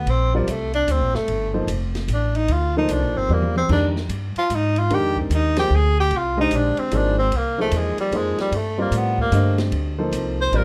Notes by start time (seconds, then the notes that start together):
Already playing: B3
0.06 A#1 C4, ride
0.34 F3 G3 C4 F4 A#4 D5
0.47 C2 A3, hi-hat pedal, ride
0.74 D4, ride
0.87 D2, hi-hat pedal, ride
0.91 C4
1.01 A#1
1.14 G1 A3, snare
1.28 G1, ride
1.54 F3 A#3 D#4 A4 C5
1.67 F1, hi-hat pedal, ride
1.95 snare, ride
2.08 A1, hi-hat pedal, ride
2.14 D4
2.35 D#4, ride
2.48 D2, ride
2.53 F4
2.76 F3 A#3 D#4 A4 C5
2.89 C2 D4, hi-hat pedal, ride
3.02 A#1
3.16 G1 C4
3.29 E2 G3 A#3 C4 F4 A#4 D5, high tom
3.42 high tom
3.56 C4, high tom
3.69 F2 D#3 G#3 D4 G4 A#4, kick, crash
3.96 snare
4.09 G2, hi-hat pedal, ride
4.36 F4, muted upright bass stroke, ride
4.50 G#2, hi-hat pedal, ride
4.55 D#4
4.76 F4, ride
4.90 F2 D#3 G#3 D4 G4 A#4, ride
5.17 C4, kick
5.30 D#2, hi-hat pedal, ride
5.34 D#4
5.56 F3 A#3 D#4 G4 G#4 C5, snare, ride
5.71 D2
5.75 G#4
6.00 G4
6.11 C2, ride
6.16 F4
6.37 D3 G#3 D#4 G4 C5 D#5
6.51 A#1, hi-hat pedal, ride
6.56 D4
6.77 C4, ride
6.91 G#1 F3 A#3 D#4 G#4 C5, hi-hat pedal, ride
6.96 D4
7.19 C4
7.31 C2, ride
7.36 A#3
7.58 F3 A3 A#3 D#4 G#4 C5
7.71 E2, hi-hat pedal, ride
7.77 G#3
7.98 G3, muted upright bass stroke, ride
8.12 F2 F3 A#3 D#4 G#4 C5, ride
8.16 G#3
8.38 G3, muted upright bass stroke, snare, ride
8.52 G2, ride
8.56 A3
8.78 G3 A#3 C4 F4 A#4 D5
8.91 A2, hi-hat pedal, ride
8.97 B3
9.18 A#3, kick
9.32 G2 D3 A3 G4 C5 D#5, hi-hat pedal, ride
9.58 snare, ride
9.72 D2, ride
9.98 F3 A#3 D#4 A4 C5
10.12 C2, hi-hat pedal, ride
10.41 C5
10.52 A1 G3 C4 F4 A#4 D5, ride
10.57 A#4